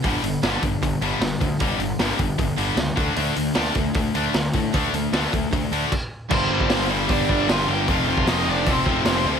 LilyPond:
<<
  \new Staff \with { instrumentName = "Lead electric guitar" } { \time 4/4 \key g \minor \tempo 4 = 153 r1 | r1 | r1 | r1 |
<c' c''>4. r8 <d' d''>4 <f' f''>8 <g' g''>8 | <f' f''>4 <ees' ees''>8 <d' d''>8 <c' c''>4. r8 | }
  \new Staff \with { instrumentName = "Distorted electric guitar" } { \clef bass \time 4/4 \key g \minor r1 | r1 | r1 | r1 |
<g, d g bes d'>4. <g, d g bes d'>2~ <g, d g bes d'>8 | <f, c f a c'>4. <f, c f a c'>2~ <f, c f a c'>8 | }
  \new Staff \with { instrumentName = "Distorted electric guitar" } { \clef bass \time 4/4 \key g \minor <g, d g>8 <g, d>8 <g, d g>8 <g, d>8 <g, d>8 <g, d g>8 <g, d>8 <g, d>8 | <g, d g>8 <g, d>8 <g, d g>8 <g, d>8 <g, d>8 <g, d g>8 <g, d>8 <d a d'>8 | <d a d'>8 <d a>8 <d a d'>8 <d a>8 <d a>8 <d a d'>8 <d a>8 <d a>8 | <d a d'>8 <d a>8 <d a d'>8 <d a>8 <d a>8 <d a d'>8 r4 |
<g, d g>8 <g, d g>8 <g, d g>8 <g, d g>8 <g, d g>8 <g, d g>8 <g, d g>8 <g, d g>8 | <f, c f>8 <f, c f>8 <f, c f>8 <f, c f>8 <f, c f>8 <f, c f>8 <f, c f>8 <f, c f>8 | }
  \new Staff \with { instrumentName = "Distorted electric guitar" } { \clef bass \time 4/4 \key g \minor <g, d g>8 <g, d>8 <g, d g>8 <g, d>8 <g, d>8 <g, d g>8 <g, d>8 <g, d>8 | <g, d g>8 <g, d>8 <g, d g>8 <g, d>8 <g, d>8 <g, d g>8 <g, d>8 <d a d'>8 | <d a d'>8 <d a>8 <d a d'>8 <d a>8 <d a>8 <d a d'>8 <d a>8 <d a>8 | <d a d'>8 <d a>8 <d a d'>8 <d a>8 <d a>8 <d a d'>8 r4 |
<g, d g>8 <g, d g>8 <g, d g>8 <g, d g>8 <g, d g>8 <g, d g>8 <g, d g>8 <g, d g>8 | <f, c f>8 <f, c f>8 <f, c f>8 <f, c f>8 <f, c f>8 <f, c f>8 <f, c f>8 <f, c f>8 | }
  \new Staff \with { instrumentName = "Picked electric bass" } { \clef bass \time 4/4 \key g \minor g,,8 g,,8 g,,8 g,,8 g,,8 g,,8 g,,8 d,8 | g,,8 g,,8 g,,8 g,,8 g,,8 g,,8 cis,8 d,8 | d,8 d,8 d,8 d,8 d,8 d,8 d,8 a,8 | d,8 d,8 d,8 d,8 d,8 d,8 r4 |
g,,8 g,,8 g,,4 g,,8 g,,8 g,,8 g,,8 | f,,8 f,,8 f,,8 f,,8 f,,8 f,,8 f,,8 d,8 | }
  \new DrumStaff \with { instrumentName = "Drums" } \drummode { \time 4/4 <hho bd>8 hho8 <hho sn>8 <hho bd>8 <hho bd>8 hho8 <hho sn>8 <hho bd>8 | <hho bd>8 hho8 <hho sn>8 <hho bd>8 <hho bd>8 hho8 <hho sn>8 <hho bd>8 | hho8 hho8 <hho sn>8 <hho bd>8 <hho bd>8 hho8 <hho sn>8 <hho bd>8 | <hho bd>8 hho8 <hho sn>8 <hho bd>8 <hho bd>8 hho8 <cymc bd>4 |
<cymc bd>8. bd16 <hho sn>4 <hho bd>8 bd8 <hho sn>4 | <hho bd>8. bd16 <hho sn>4 <hho bd>8 bd8 <hho sn>4 | }
>>